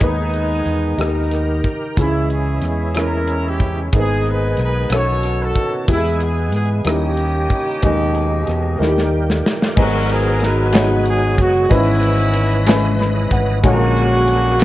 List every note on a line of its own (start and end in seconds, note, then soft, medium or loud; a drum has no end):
0.00 0.62 D#2 medium
0.00 0.97 D#3 soft
0.00 0.96 D#3 soft
0.00 0.98 G#3 soft
0.00 0.98 B3 soft
0.00 0.60 D#4 medium
0.00 0.98 G#4 medium
0.00 0.61 G#4 medium
0.00 0.62 B4 medium
0.00 kick loud
0.00 closed hi-hat medium
0.04 1.62 G#3 medium
0.04 1.62 B3 soft
0.04 1.66 D#4 medium
0.34 closed hi-hat soft
0.66 0.96 E2 medium
0.66 closed hi-hat soft
0.98 1.60 D#2 medium
0.98 1.97 D#3 medium
0.98 1.93 D#3 medium
0.98 1.58 D#4 medium
0.98 1.97 G4 medium
0.98 1.58 G4 medium
0.98 1.97 A#4 soft
0.98 1.59 A#4 medium
0.98 cross-stick medium
0.98 closed hi-hat medium
1.31 cross-stick soft
1.31 closed hi-hat soft
1.64 kick medium
1.64 closed hi-hat medium
1.96 2.58 C#2 medium
1.96 2.92 C#3 soft
1.96 3.89 E3 soft
1.96 3.89 G#3 soft
1.96 2.92 G#3 medium
1.96 3.89 C#4 soft
1.96 2.57 C#4 medium
1.96 2.92 C#4 medium
1.96 3.89 E4 soft
1.96 2.57 E4 medium
1.96 2.29 E4 medium
1.96 2.58 G#4 medium
1.96 kick loud
1.96 closed hi-hat medium
2.30 2.64 G#4 medium
2.30 closed hi-hat soft
2.61 3.88 E2 medium
2.61 cross-stick soft
2.61 closed hi-hat medium
2.67 2.95 G#4 medium
2.94 3.54 C#4 medium
2.94 3.55 E4 soft
2.94 3.55 A#4 medium
2.94 cross-stick medium
2.94 closed hi-hat medium
2.99 3.91 C#4 medium
2.99 3.91 E4 medium
2.99 3.46 A#4 medium
3.27 closed hi-hat soft
3.49 3.79 G4 medium
3.60 kick medium
3.60 closed hi-hat medium
3.92 4.54 G#1 medium
3.92 4.87 G#2 medium
3.92 4.88 D#3 soft
3.92 4.90 G#3 soft
3.92 4.00 A#3 medium
3.92 4.88 B3 medium
3.92 4.53 D#4 medium
3.92 4.91 G#4 medium
3.92 4.53 G#4 medium
3.92 kick loud
3.92 closed hi-hat medium
3.98 4.90 B3 medium
3.98 4.55 B3 medium
3.98 4.89 D#4 medium
3.98 4.26 G#4 medium
4.26 closed hi-hat soft
4.30 4.60 B4 medium
4.57 4.88 B1 medium
4.57 cross-stick soft
4.57 closed hi-hat medium
4.64 4.91 B4 medium
4.89 5.51 B1 medium
4.89 5.85 B2 medium
4.89 5.87 D#3 soft
4.89 5.88 B3 soft
4.89 5.50 B3 medium
4.89 5.88 C#4 soft
4.89 4.97 C#4 soft
4.89 5.51 F#4 soft
4.89 5.88 A4 soft
4.89 5.51 A4 medium
4.89 5.51 C#5 medium
4.89 cross-stick loud
4.89 closed hi-hat medium
4.93 5.86 F#4 medium
4.93 5.41 A4 medium
4.93 5.42 C#5 medium
4.98 5.53 D#4 soft
5.23 cross-stick soft
5.23 closed hi-hat soft
5.42 5.73 A4 medium
5.55 kick medium
5.55 closed hi-hat medium
5.88 6.53 E2 medium
5.88 6.82 E3 medium
5.88 6.86 E3 medium
5.88 6.86 G#3 soft
5.88 6.83 G#3 medium
5.88 6.47 B3 medium
5.88 6.86 B3 soft
5.88 6.83 B3 medium
5.88 6.48 E4 medium
5.88 6.20 E4 medium
5.88 5.96 G4 medium
5.88 6.86 G#4 medium
5.88 kick loud
5.88 closed hi-hat medium
5.97 6.52 G#4 medium
6.21 6.55 G#4 medium
6.21 closed hi-hat soft
6.52 6.83 G#2 medium
6.52 6.70 G#4 medium
6.52 cross-stick soft
6.52 closed hi-hat medium
6.85 7.46 D#2 medium
6.85 7.79 D#3 medium
6.85 7.82 D#3 soft
6.85 7.44 G3 medium
6.85 9.10 A#3 medium
6.85 7.45 C#4 soft
6.85 7.83 C#4 soft
6.85 9.10 C#4 medium
6.85 7.45 D#4 soft
6.85 7.45 E4 soft
6.85 7.82 G4 soft
6.85 7.46 A#4 medium
6.85 7.84 D#5 soft
6.85 cross-stick loud
6.85 closed hi-hat medium
6.89 9.11 G4 medium
7.17 closed hi-hat soft
7.50 kick medium
7.50 closed hi-hat soft
7.82 8.44 D#2 medium
7.82 8.42 B2 medium
7.82 8.80 B2 medium
7.82 8.78 D#3 medium
7.82 8.77 D#3 medium
7.82 8.80 G#3 medium
7.82 8.43 G#3 medium
7.82 8.42 D#4 medium
7.82 7.90 G4 medium
7.82 kick loud
7.82 closed hi-hat medium
7.90 8.84 D#4 medium
8.15 closed hi-hat soft
8.47 8.78 E2 medium
8.47 cross-stick soft
8.47 closed hi-hat soft
8.78 9.41 D#2 medium
8.78 9.77 D#3 soft
8.78 9.73 D#3 medium
8.78 9.77 G3 medium
8.78 9.38 A#3 medium
8.78 9.77 A#3 soft
8.78 9.39 D#4 medium
8.78 8.87 E4 medium
8.78 9.77 G4 medium
8.78 snare soft
8.88 9.43 G4 medium
8.98 snare soft
9.30 snare medium
9.46 snare medium
9.62 snare medium
9.76 11.38 G#1 loud
9.76 10.70 G#2 medium
9.76 11.67 F#3 medium
9.76 10.36 G#3 medium
9.76 11.67 G#3 medium
9.76 11.67 B3 medium
9.76 10.36 B3 medium
9.76 10.36 D#4 medium
9.76 10.37 F#4 medium
9.76 10.09 F#4 loud
9.76 11.67 G#4 medium
9.76 10.37 A#4 medium
9.76 kick loud
9.76 crash medium
9.81 10.72 B3 medium
9.81 10.72 A#4 medium
10.09 10.43 G#4 medium
10.09 closed hi-hat medium
10.40 11.36 D#4 medium
10.40 11.07 B4 medium
10.40 snare soft
10.40 closed hi-hat medium
10.45 11.36 F#4 medium
10.72 11.32 G#3 medium
10.72 11.32 B3 medium
10.72 11.33 D#4 medium
10.72 11.33 F#4 medium
10.72 11.33 C#5 medium
10.72 snare loud
10.72 clap medium
10.72 closed hi-hat medium
11.06 11.38 G#4 medium
11.06 closed hi-hat soft
11.38 11.68 F#1 medium
11.38 11.72 F#4 medium
11.38 kick medium
11.38 closed hi-hat medium
11.69 13.28 G#1 loud
11.69 12.63 G#2 medium
11.69 13.59 E3 medium
11.69 12.28 G#3 medium
11.69 12.96 B3 medium
11.69 12.29 C#4 medium
11.69 13.60 C#4 medium
11.69 12.30 E4 medium
11.69 13.59 B4 medium
11.69 12.30 B4 medium
11.69 13.60 D#5 medium
11.69 12.29 D#5 medium
11.69 kick loud
11.69 closed hi-hat loud
11.73 12.97 C#4 medium
11.73 12.97 E4 medium
12.03 closed hi-hat soft
12.34 closed hi-hat medium
12.66 13.25 G#3 medium
12.66 13.26 C#4 medium
12.66 13.26 E4 medium
12.66 13.27 B4 medium
12.66 13.26 D#5 medium
12.66 snare loud
12.66 clap medium
12.66 closed hi-hat medium
12.99 13.30 B5 medium
12.99 snare soft
12.99 closed hi-hat soft
13.31 13.61 G#1 medium
13.31 13.62 F#5 medium
13.31 kick medium
13.31 closed hi-hat medium
13.63 14.64 A#1 medium
13.63 14.57 A#2 medium
13.63 14.23 D3 medium
13.63 14.64 F#3 medium
13.63 14.22 G#3 medium
13.63 14.64 A#3 medium
13.63 14.57 C#4 medium
13.63 14.57 D4 medium
13.63 14.64 F#4 medium
13.63 14.23 F#4 medium
13.63 14.57 F#4 medium
13.63 13.71 G4 medium
13.63 13.71 A4 medium
13.63 14.22 C#5 medium
13.63 kick loud
13.63 closed hi-hat loud
13.70 14.64 G#4 medium
13.70 14.27 A#4 medium
13.96 closed hi-hat medium
14.27 closed hi-hat medium
14.59 14.64 G#3 medium
14.59 14.64 C#4 medium
14.59 clap medium
14.59 closed hi-hat medium